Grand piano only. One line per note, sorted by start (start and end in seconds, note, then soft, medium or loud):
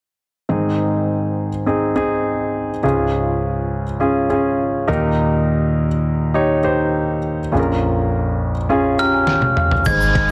0.49 2.80 G#2 soft
0.49 2.80 D#3 soft
0.49 1.48 C4 medium
0.49 1.49 D#4 soft
0.49 1.49 G#4 medium
1.66 1.91 C4 medium
1.66 1.92 D#4 soft
1.66 1.92 G#4 medium
1.96 2.70 C4 medium
1.96 2.70 D#4 medium
1.96 2.70 G#4 medium
2.83 4.84 C#2 soft
2.83 4.84 G#2 soft
2.83 3.82 C#4 medium
2.83 3.83 F4 medium
2.83 3.83 G#4 medium
4.00 4.25 C#4 medium
4.00 4.25 F4 medium
4.00 4.25 G#4 medium
4.30 4.88 C#4 medium
4.30 4.88 F4 soft
4.30 4.89 G#4 medium
4.88 7.18 D#2 medium
4.88 7.18 A#2 medium
4.88 5.87 D#4 medium
4.88 5.87 G4 medium
4.88 5.88 A#4 medium
6.34 6.59 D#4 medium
6.34 6.60 G4 medium
6.34 6.60 C#5 medium
6.63 7.38 D#4 medium
6.63 7.39 G4 medium
6.63 7.39 C5 medium
7.52 9.82 A#1 medium
7.52 9.82 F2 soft
7.52 8.51 C#4 medium
7.52 8.51 F4 medium
7.52 7.59 G#4 soft
7.59 8.55 A#4 medium
8.69 8.94 C#4 medium
8.69 8.94 F4 medium
8.69 8.94 G#4 medium
8.99 9.73 C#4 medium
8.99 9.73 F4 medium
8.99 9.73 G4 medium
8.99 9.12 A#5 medium
9.14 9.27 G#5 medium
9.28 9.55 G5 medium
9.56 9.84 F5 medium
9.86 10.31 G#2 medium
9.86 10.31 D#3 medium
9.86 10.23 D#4 medium
9.86 10.23 G#4 medium
9.86 10.24 C5 medium